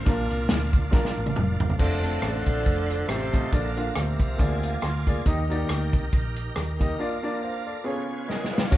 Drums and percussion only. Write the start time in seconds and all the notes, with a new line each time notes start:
0.06 kick, closed hi-hat
0.30 closed hi-hat
0.49 snare, closed hi-hat
0.73 kick, closed hi-hat
0.92 kick, snare
1.05 snare
1.26 high tom
1.36 mid tom
1.60 floor tom
1.70 floor tom
1.79 kick, crash
2.04 closed hi-hat
2.22 cross-stick, closed hi-hat
2.46 kick, closed hi-hat
2.66 kick, closed hi-hat
2.90 closed hi-hat
3.09 cross-stick, closed hi-hat
3.34 kick, cross-stick, closed hi-hat
3.53 kick, closed hi-hat
3.77 closed hi-hat
3.96 cross-stick, closed hi-hat
4.20 kick, closed hi-hat
4.39 kick, closed hi-hat
4.63 closed hi-hat
4.82 cross-stick, closed hi-hat
5.07 kick, closed hi-hat
5.26 kick, closed hi-hat
5.51 closed hi-hat
5.69 cross-stick, closed hi-hat
5.93 kick, closed hi-hat
6.12 kick, closed hi-hat
6.36 closed hi-hat
6.56 cross-stick, closed hi-hat
6.81 kick, closed hi-hat
8.30 snare
8.44 snare
8.58 snare
8.72 kick, crash